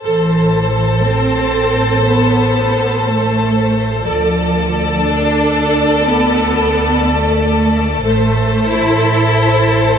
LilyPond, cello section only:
\new Staff \with { instrumentName = "Cello section" } { \time 6/8 \key a \minor \tempo 4. = 60 e4. c'4. | b4. a4. | f4. d'4. | b4. a4. |
a4 e'2 | }